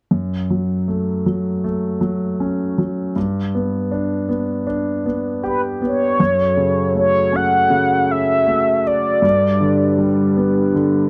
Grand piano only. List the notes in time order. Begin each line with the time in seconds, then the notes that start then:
0.11 F#2
0.50 F#3
0.88 A3
1.26 F#3
1.64 A3
2.01 F#3
2.40 C#4
2.78 F#3
3.16 G2
3.55 B3
3.91 D4
4.29 B3
4.67 D4
5.06 B3
5.43 G4
5.81 B3
6.20 F#2
6.57 C#3
6.95 A3
7.33 C#4
7.70 C#3
8.47 A3
9.22 G2
9.61 D3
9.98 G3
10.37 B3
10.74 D3